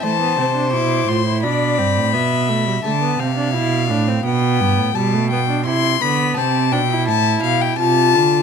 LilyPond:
<<
  \new Staff \with { instrumentName = "Violin" } { \time 4/4 \key g \dorian \tempo 4 = 85 a''4 d'''8 c'''8 b''2 | a''8 f''4. g''4 a''8 g''8 | c'''8 b''8 a''8 g''8 a''8 f''16 g''16 a''4 | }
  \new Staff \with { instrumentName = "Violin" } { \time 4/4 \key g \dorian c''2 d''4 e''4 | r1 | r1 | }
  \new Staff \with { instrumentName = "Viola" } { \time 4/4 \key g \dorian a16 b16 c'16 d'16 e'8 f'16 e'16 d'8 c'8 b8 a16 g16 | a16 b16 c'16 d'16 e'8 d'16 c'16 b4 g16 a16 b16 d'16 | e'8 b8 c'8 d'16 e'4~ e'16 f'4 | }
  \new Staff \with { instrumentName = "Cello" } { \clef bass \time 4/4 \key g \dorian e8 c8 b,8 a,8 b,8 g,16 a,16 b,4 | d8 c8 b,8 a,8 b,8 g,16 a,16 b,4 | c8 d8 c8 b,8 a,8 b,8 c8 d8 | }
>>